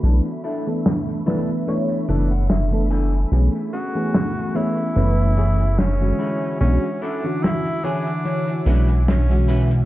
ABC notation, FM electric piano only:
X:1
M:4/4
L:1/16
Q:"Swing 16ths" 1/4=73
K:Dlyd
V:1 name="FM electric piano"
[E,A,B,DA] z2 [E,A,B,DA]3 [E,A,B,DB]2 [E,A,B,Dc]2 [E,A,B,DA] z2 [E,A,B,DA]3 | [E,A,B,CG] z2 [E,A,B,CG]3 [E,A,B,C]2 [E,A,B,CB]2 [E,A,B,CG] z2 [D,E,G,CF]3 | [E,G,CDF] z2 [D,E,CF]3 [D,E,cg]2 [D,E,c]2 [E,G,CDF] z2 [D,E,G,CF]3 |]